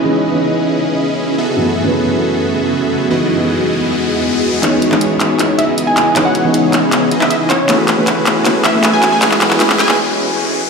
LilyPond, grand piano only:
\new Staff \with { instrumentName = "Grand piano" } { \time 4/4 \key cis \minor \tempo 4 = 157 <e gis b cis' dis'>8. <e gis b cis' dis''>2~ <e gis b cis' dis''>8. r8 | <fis, e a b cis' gis'>8. <fis, e a b cis' b'>2.~ <fis, e a b cis' b'>16 | <e gis b dis' fis'>8. <e gis b fis' dis''>2.~ <e gis b fis' dis''>16 | <e gis b cis' dis'>8. <e gis b cis' fis'>2.~ <e gis b cis' fis'>16 |
<e gis b cis' dis'>8. <e gis b cis' dis''>2~ <e gis b cis' dis''>8. r8 | <e a b cis' gis'>8. <e a b cis' b'>4~ <e a b cis' b'>16 <e a b cis' gis'>8. <e a b cis' b'>4~ <e a b cis' b'>16 | <e gis b cis' gis'>8. <e gis b cis' b'>16 <e gis b cis' gis'>8. <e gis b cis' b'>16 r2 | }